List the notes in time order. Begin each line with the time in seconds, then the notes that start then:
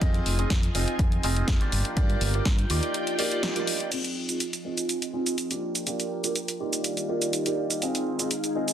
Already playing: F4
0.01 F2 C4 D#4 F4 G#4 D#5 G#5, kick, closed hi-hat
0.14 closed hi-hat
0.26 F1, open hi-hat
0.38 C4 D#4 F4 G#4 D#5, closed hi-hat
0.50 F2, kick, snare, closed hi-hat
0.63 closed hi-hat
0.74 F1 C4 D#4 F4 G#4 D#5, open hi-hat
0.88 closed hi-hat
0.99 F2, kick, closed hi-hat
1.12 closed hi-hat
1.23 F1 C4 D#4 F4 G#4 D#5, open hi-hat
1.36 closed hi-hat
1.48 F2, kick, snare, closed hi-hat
1.61 A#3 D4 F4 G4 D5, closed hi-hat
1.72 G1 F4 A#4 G5, open hi-hat
1.85 closed hi-hat
1.97 G2 A#3 D4 F4 G4 D5, kick, closed hi-hat
2.10 closed hi-hat
2.21 G1, open hi-hat
2.34 A#3 D4 F4 G4 D5, closed hi-hat
2.45 G2, kick, snare, closed hi-hat
2.58 closed hi-hat
2.70 D#2 A#3 D#4 F4 G4 D5, open hi-hat
2.83 closed hi-hat
2.94 closed hi-hat
3.07 closed hi-hat
3.18 A#3 D#4 F4 G4 D5, open hi-hat
3.32 closed hi-hat
3.43 snare, closed hi-hat
3.56 A#3 D#4 F4 G4 D5, closed hi-hat
3.67 open hi-hat
3.80 closed hi-hat
3.91 C4 D#4 F4 G#4 D#5 G#5, closed hi-hat, crash, shaker
4.04 closed hi-hat, shaker
4.29 C4 D#4 F4 G#4 D#5, closed hi-hat, shaker
4.40 closed hi-hat, shaker
4.53 closed hi-hat, shaker
4.64 C4 D#4 F4 G#4 D#5
4.78 closed hi-hat, shaker
4.89 closed hi-hat, shaker
5.02 closed hi-hat, shaker
5.13 C4 D#4 F4 G#4 D#5
5.26 closed hi-hat, shaker
5.38 closed hi-hat, shaker
5.50 A#3 D4 F4 G4 D5, closed hi-hat, shaker
5.62 A#4 G5
5.75 closed hi-hat, shaker
5.86 A#3 D4 F4 G4 D5, closed hi-hat, shaker
6.00 closed hi-hat, shaker
6.24 A#3 D4 F4 G4 D5, closed hi-hat, shaker
6.36 closed hi-hat, shaker
6.48 closed hi-hat, shaker
6.60 A#3 D#4 F4 G4 D5 F5
6.73 closed hi-hat, shaker
6.84 closed hi-hat, shaker
6.97 closed hi-hat, shaker
7.08 A#3 D#4 F4 G4 D5
7.22 closed hi-hat, shaker
7.33 closed hi-hat, shaker
7.46 A#3 D#4 F4 G4 D5, closed hi-hat, shaker
7.70 closed hi-hat, shaker
7.82 C4 D#4 F4 G#4 D#5, closed hi-hat, shaker
7.95 closed hi-hat, shaker
8.19 C4 D#4 F4 G#4 D#5, closed hi-hat, shaker
8.31 closed hi-hat, shaker
8.44 closed hi-hat, shaker
8.55 C4 D#4 F4 G#4 D#5
8.68 closed hi-hat, shaker